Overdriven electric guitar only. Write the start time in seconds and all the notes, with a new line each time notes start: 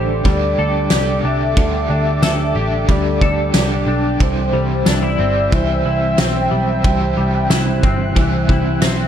Already playing: D3 G3 D4 G4 A4
0.24 G3 D4 G4
0.29 A4
0.90 G3 D4 G4
0.95 A4
1.56 D3 G3 D4 G4 A4
2.55 G4 A4
2.60 D4
2.87 G3 D4 G4
2.92 A4
3.53 G3 D4 G4
3.58 A4
4.19 C3 E3 G3 C4 E4 C5
5.18 C4 E4 C5
5.23 G3
5.51 G3 C4 E4
5.56 C5
6.17 G3 C4 E4
6.22 C5
6.82 C3 E3 G3
6.87 C4 E4 C5
8.15 G3 C4 E4
8.20 C5
8.81 G3 C4 E4
8.85 C5